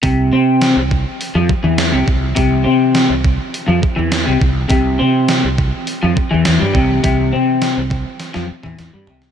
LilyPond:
<<
  \new Staff \with { instrumentName = "Clean electric guitar" } { \clef bass \time 4/4 \key c \major \tempo 4 = 103 c8 c'8. c8 r8 f16 r16 e8 c16 c8 | c8 c'8. c8 r8 f16 r16 e8 c16 c8 | c8 c'8. c8 r8 f16 r16 e16 e16 g16 c8 | c8 c'8. c8 r8 f16 r16 e16 e16 g16 c8 | }
  \new Staff \with { instrumentName = "Fretless electric bass" } { \clef bass \time 4/4 \key c \major c,8 c8. c,8 r8 f,16 r16 e,8 c,16 c,8 | c,8 c8. c,8 r8 f,16 r16 e,8 c,16 c,8 | c,8 c8. c,8 r8 f,16 r16 e,16 e,16 g,16 c,8 | c,8 c8. c,8 r8 f,16 r16 e,16 e,16 g,16 c,8 | }
  \new DrumStaff \with { instrumentName = "Drums" } \drummode { \time 4/4 <hho bd>4 <hho sn>8 bd8 hho8 bd8 <hho sn>8 bd8 | <hho bd>4 <hho sn>8 bd8 hho8 bd8 <hho sn>8 bd8 | <hho bd>4 <hho sn>8 bd8 hho8 bd8 <hho sn>8 bd8 | <hho bd>4 <hho sn>8 <bd sn>8 <hho sn>16 sn8 toml16 <hho sn>8 tomfh16 sn16 | }
>>